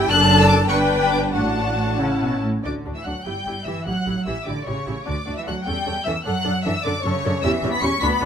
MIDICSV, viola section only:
0, 0, Header, 1, 2, 480
1, 0, Start_track
1, 0, Key_signature, 2, "major"
1, 0, Tempo, 405954
1, 123, Time_signature, 6, 3, 24, 8
1, 1085, Tempo, 428571
1, 3485, Tempo, 401875
1, 6365, Tempo, 391389
1, 9775, End_track
2, 0, Start_track
2, 0, Title_t, "Viola section"
2, 0, Program_c, 0, 48
2, 0, Note_on_c, 0, 67, 98
2, 117, Note_on_c, 0, 62, 93
2, 120, Note_off_c, 0, 67, 0
2, 122, Note_on_c, 0, 69, 99
2, 787, Note_off_c, 0, 62, 0
2, 789, Note_off_c, 0, 69, 0
2, 830, Note_on_c, 0, 62, 89
2, 830, Note_on_c, 0, 71, 94
2, 1549, Note_off_c, 0, 62, 0
2, 1562, Note_on_c, 0, 62, 73
2, 1562, Note_on_c, 0, 66, 71
2, 1567, Note_off_c, 0, 71, 0
2, 2280, Note_off_c, 0, 62, 0
2, 2280, Note_off_c, 0, 66, 0
2, 2288, Note_on_c, 0, 64, 70
2, 2293, Note_on_c, 0, 61, 74
2, 2788, Note_off_c, 0, 64, 0
2, 2790, Note_off_c, 0, 61, 0
2, 3020, Note_on_c, 0, 66, 44
2, 3022, Note_on_c, 0, 62, 46
2, 3109, Note_off_c, 0, 66, 0
2, 3112, Note_off_c, 0, 62, 0
2, 3251, Note_on_c, 0, 66, 41
2, 3253, Note_on_c, 0, 62, 42
2, 3341, Note_off_c, 0, 66, 0
2, 3342, Note_off_c, 0, 62, 0
2, 3480, Note_on_c, 0, 62, 40
2, 3482, Note_on_c, 0, 66, 41
2, 3576, Note_off_c, 0, 62, 0
2, 3577, Note_off_c, 0, 66, 0
2, 3717, Note_on_c, 0, 64, 44
2, 3719, Note_on_c, 0, 67, 42
2, 3813, Note_off_c, 0, 64, 0
2, 3814, Note_off_c, 0, 67, 0
2, 3961, Note_on_c, 0, 67, 40
2, 3965, Note_on_c, 0, 64, 41
2, 4057, Note_off_c, 0, 67, 0
2, 4060, Note_off_c, 0, 64, 0
2, 4204, Note_on_c, 0, 64, 43
2, 4205, Note_on_c, 0, 67, 43
2, 4300, Note_off_c, 0, 64, 0
2, 4300, Note_off_c, 0, 67, 0
2, 4435, Note_on_c, 0, 67, 49
2, 4436, Note_on_c, 0, 64, 47
2, 4531, Note_off_c, 0, 67, 0
2, 4532, Note_off_c, 0, 64, 0
2, 4670, Note_on_c, 0, 67, 45
2, 4672, Note_on_c, 0, 64, 45
2, 4766, Note_off_c, 0, 67, 0
2, 4768, Note_off_c, 0, 64, 0
2, 4914, Note_on_c, 0, 64, 49
2, 4916, Note_on_c, 0, 67, 44
2, 5009, Note_off_c, 0, 64, 0
2, 5011, Note_off_c, 0, 67, 0
2, 5153, Note_on_c, 0, 67, 53
2, 5161, Note_on_c, 0, 64, 49
2, 5248, Note_off_c, 0, 67, 0
2, 5256, Note_off_c, 0, 64, 0
2, 5390, Note_on_c, 0, 64, 46
2, 5393, Note_on_c, 0, 67, 44
2, 5486, Note_off_c, 0, 64, 0
2, 5489, Note_off_c, 0, 67, 0
2, 5625, Note_on_c, 0, 64, 50
2, 5628, Note_on_c, 0, 67, 48
2, 5720, Note_off_c, 0, 64, 0
2, 5723, Note_off_c, 0, 67, 0
2, 5860, Note_on_c, 0, 66, 60
2, 5864, Note_on_c, 0, 62, 55
2, 5956, Note_off_c, 0, 66, 0
2, 5959, Note_off_c, 0, 62, 0
2, 6104, Note_on_c, 0, 66, 52
2, 6108, Note_on_c, 0, 62, 54
2, 6199, Note_off_c, 0, 66, 0
2, 6203, Note_off_c, 0, 62, 0
2, 6355, Note_on_c, 0, 62, 53
2, 6357, Note_on_c, 0, 66, 51
2, 6453, Note_off_c, 0, 62, 0
2, 6455, Note_off_c, 0, 66, 0
2, 6593, Note_on_c, 0, 61, 60
2, 6597, Note_on_c, 0, 69, 60
2, 6691, Note_off_c, 0, 61, 0
2, 6695, Note_off_c, 0, 69, 0
2, 6843, Note_on_c, 0, 61, 56
2, 6843, Note_on_c, 0, 69, 52
2, 6940, Note_off_c, 0, 69, 0
2, 6941, Note_off_c, 0, 61, 0
2, 7087, Note_on_c, 0, 61, 60
2, 7090, Note_on_c, 0, 69, 56
2, 7184, Note_off_c, 0, 61, 0
2, 7186, Note_off_c, 0, 69, 0
2, 7319, Note_on_c, 0, 62, 67
2, 7326, Note_on_c, 0, 69, 69
2, 7417, Note_off_c, 0, 62, 0
2, 7423, Note_off_c, 0, 69, 0
2, 7554, Note_on_c, 0, 62, 62
2, 7554, Note_on_c, 0, 69, 64
2, 7652, Note_off_c, 0, 62, 0
2, 7652, Note_off_c, 0, 69, 0
2, 7805, Note_on_c, 0, 69, 59
2, 7809, Note_on_c, 0, 62, 60
2, 7902, Note_off_c, 0, 69, 0
2, 7905, Note_off_c, 0, 62, 0
2, 8055, Note_on_c, 0, 62, 66
2, 8056, Note_on_c, 0, 69, 70
2, 8150, Note_off_c, 0, 62, 0
2, 8151, Note_off_c, 0, 69, 0
2, 8297, Note_on_c, 0, 62, 61
2, 8298, Note_on_c, 0, 69, 63
2, 8392, Note_off_c, 0, 62, 0
2, 8393, Note_off_c, 0, 69, 0
2, 8536, Note_on_c, 0, 62, 65
2, 8536, Note_on_c, 0, 69, 66
2, 8631, Note_off_c, 0, 62, 0
2, 8631, Note_off_c, 0, 69, 0
2, 8778, Note_on_c, 0, 61, 81
2, 8781, Note_on_c, 0, 67, 77
2, 8872, Note_off_c, 0, 61, 0
2, 8875, Note_off_c, 0, 67, 0
2, 9016, Note_on_c, 0, 61, 72
2, 9020, Note_on_c, 0, 67, 71
2, 9110, Note_off_c, 0, 61, 0
2, 9113, Note_off_c, 0, 67, 0
2, 9237, Note_on_c, 0, 61, 71
2, 9241, Note_on_c, 0, 67, 72
2, 9335, Note_off_c, 0, 61, 0
2, 9338, Note_off_c, 0, 67, 0
2, 9480, Note_on_c, 0, 62, 79
2, 9480, Note_on_c, 0, 66, 79
2, 9576, Note_off_c, 0, 66, 0
2, 9577, Note_off_c, 0, 62, 0
2, 9717, Note_on_c, 0, 62, 72
2, 9718, Note_on_c, 0, 66, 66
2, 9775, Note_off_c, 0, 62, 0
2, 9775, Note_off_c, 0, 66, 0
2, 9775, End_track
0, 0, End_of_file